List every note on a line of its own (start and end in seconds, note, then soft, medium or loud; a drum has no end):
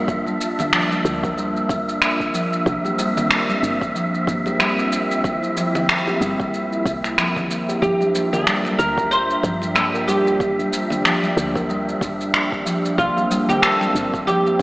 0.00 0.33 G2 medium
0.00 2.62 G3 medium
0.00 12.94 A#3 medium
0.00 5.20 D4 medium
0.00 2.62 F4 medium
0.00 14.62 E5 medium
0.08 2.63 A5 medium
0.08 kick loud
0.08 shaker soft
0.26 high conga medium
0.26 shaker soft
0.41 shaker medium
0.59 muted conga soft
0.59 low conga medium
0.59 shaker soft
0.72 1.03 F3 medium
0.72 finger snap loud
0.72 shaker soft
0.91 muted conga soft
0.91 high conga medium
0.91 shaker soft
1.05 1.62 D2 loud
1.05 1.22 A#3 medium
1.05 shaker medium
1.23 1.36 A#4 medium
1.23 kick loud
1.23 shaker soft
1.37 1.55 G3 medium
1.37 shaker soft
1.57 shaker soft
1.69 2.59 G1 medium
1.69 kick loud
1.69 shaker medium
1.89 shaker soft
2.02 finger snap loud
2.02 shaker soft
2.20 kick medium
2.20 shaker soft
2.34 2.65 F3 medium
2.34 shaker medium
2.53 shaker soft
2.66 2.78 C2 loud
2.66 7.78 F3 medium
2.66 2.83 A#3 medium
2.66 7.78 C4 medium
2.66 7.78 G4 medium
2.66 kick loud
2.66 shaker soft
2.85 2.98 G4 medium
2.85 high conga medium
2.85 shaker soft
2.99 3.16 G3 loud
2.99 shaker medium
3.17 low conga loud
3.17 shaker soft
3.31 finger snap loud
3.31 shaker soft
3.49 muted conga medium
3.49 high conga medium
3.49 shaker soft
3.63 4.20 G1 loud
3.63 shaker medium
3.81 kick loud
3.81 shaker soft
3.95 4.26 F3 medium
3.95 shaker soft
4.15 shaker soft
4.27 5.49 G1 medium
4.27 4.44 A#3 medium
4.27 kick loud
4.27 shaker medium
4.46 4.59 G4 medium
4.46 muted conga medium
4.46 shaker soft
4.59 4.77 G3 medium
4.59 finger snap loud
4.59 muted conga medium
4.59 high conga soft
4.59 shaker soft
4.79 shaker soft
4.93 shaker medium
5.11 shaker soft
5.24 7.80 E4 medium
5.24 kick loud
5.24 shaker soft
5.43 high conga medium
5.43 shaker soft
5.57 5.87 F3 medium
5.57 shaker medium
5.75 muted conga soft
5.75 low conga loud
5.75 shaker soft
5.89 6.06 A#3 medium
5.89 finger snap medium
5.89 shaker soft
6.07 6.20 G4 medium
6.07 muted conga soft
6.07 high conga medium
6.07 shaker soft
6.21 6.78 G1 loud
6.21 6.39 G3 loud
6.21 shaker medium
6.40 kick loud
6.40 shaker soft
6.54 shaker soft
6.73 shaker soft
6.86 7.75 C2 medium
6.86 kick loud
6.86 shaker medium
7.04 finger snap soft
7.04 shaker soft
7.18 7.49 F3 medium
7.18 finger snap medium
7.18 shaker soft
7.36 kick medium
7.36 low conga medium
7.36 shaker soft
7.50 7.67 A#3 medium
7.50 shaker medium
7.69 7.82 G4 medium
7.69 shaker soft
7.82 7.94 G1 loud
7.82 12.94 F3 medium
7.82 8.13 F3 medium
7.82 12.94 G3 medium
7.82 14.62 D4 medium
7.82 8.34 G4 medium
7.82 14.62 G4 medium
7.82 kick loud
7.82 shaker soft
8.01 high conga medium
8.01 shaker soft
8.15 8.31 A#3 medium
8.15 shaker medium
8.33 8.78 A4 medium
8.33 8.46 A#4 medium
8.33 low conga medium
8.33 shaker soft
8.47 8.64 G3 medium
8.47 finger snap medium
8.47 shaker soft
8.65 muted conga soft
8.65 high conga medium
8.65 shaker soft
8.79 9.36 D2 loud
8.79 9.09 A#4 loud
8.79 shaker medium
8.98 kick medium
8.98 shaker soft
9.11 9.75 C5 loud
9.11 shaker soft
9.30 shaker soft
9.43 10.65 G2 medium
9.43 9.74 F3 medium
9.43 kick loud
9.43 shaker medium
9.62 muted conga medium
9.62 shaker soft
9.75 9.92 A#3 medium
9.75 9.84 A4 medium
9.75 finger snap medium
9.75 muted conga medium
9.75 high conga soft
9.75 shaker soft
9.94 10.07 A#4 medium
9.94 shaker soft
10.07 10.26 G3 loud
10.07 11.33 G4 medium
10.07 shaker medium
10.27 shaker soft
10.40 kick loud
10.40 shaker soft
10.59 high conga medium
10.59 shaker soft
10.73 shaker medium
10.90 muted conga soft
10.90 low conga medium
10.90 shaker soft
11.04 11.35 F3 medium
11.04 finger snap medium
11.04 shaker soft
11.23 muted conga medium
11.23 high conga medium
11.23 shaker soft
11.37 11.94 D2 loud
11.37 11.54 A#3 medium
11.37 shaker medium
11.55 11.69 A#4 medium
11.55 kick medium
11.55 shaker soft
11.69 11.87 G3 loud
11.69 shaker soft
11.89 shaker soft
12.01 12.91 G1 medium
12.01 kick loud
12.01 shaker medium
12.21 shaker soft
12.34 finger snap medium
12.34 shaker soft
12.52 kick medium
12.52 shaker soft
12.66 12.97 F3 medium
12.66 shaker medium
12.85 shaker soft
12.98 13.10 C2 loud
12.98 14.62 F3 medium
12.98 13.15 A#3 medium
12.98 14.62 A#3 medium
12.98 14.62 C4 medium
12.98 13.46 F4 medium
12.98 kick loud
12.98 shaker soft
13.17 13.30 G4 medium
13.17 high conga medium
13.17 shaker soft
13.31 13.48 G3 loud
13.31 shaker medium
13.49 13.62 G4 medium
13.49 low conga medium
13.49 shaker soft
13.62 14.27 A4 loud
13.62 finger snap loud
13.62 shaker soft
13.81 muted conga medium
13.81 high conga medium
13.81 shaker soft
13.95 14.52 G1 loud
13.95 shaker medium
14.14 kick medium
14.14 shaker soft
14.27 14.58 F3 medium
14.27 14.62 G4 loud
14.27 shaker soft
14.47 shaker soft